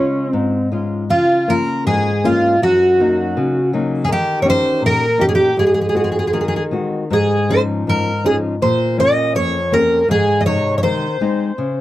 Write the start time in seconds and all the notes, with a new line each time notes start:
Already playing: C#3 G#3 C#4 F4
0.29 G#2 C4
0.72 G#3 C#4 F4
1.10 C#3 F4
1.48 A#3 C#4 F4 A#4
1.86 G#2 G#4
2.24 A#3 C#4 F4
2.62 F#2 F#4
3.00 F#3 A#3 D#4
3.37 C#3
3.73 F#3 A#3 D#4
4.05 D#3 G#4
4.12 G4
4.42 C#4 D#4 G4 C#5
4.50 C5
4.81 A#2
4.86 A#4
5.18 C#4 D#4 G4
5.29 G#4
5.35 G4
5.57 G#2 G#4
5.67 G#4
5.74 G#4
5.81 G#4
5.89 G#4
5.94 G#3 C4 F#4 G#4
6.04 G#4
6.12 G#4
6.19 G#4
6.27 G#4
6.33 D#3 G#4
6.41 G#4
6.48 G#4
6.56 G#4
6.71 G#3 C4 F#4
7.10 G#2 G#4
7.49 F3 C#4 D#4 C5
7.87 G#2 A#4
8.24 F3 C#4 D#4 G#4
8.62 A#2 C5
8.98 A#3 C#4 D#5
9.35 F2 C#5
9.72 A#3 C4 C#4 A#4
10.08 G#2 G#4
10.41 D#5
10.46 C3 G#3 D#4 C#5
10.78 C#5
10.83 D#3 C5
11.21 G#3 C4 D#4
11.58 C#3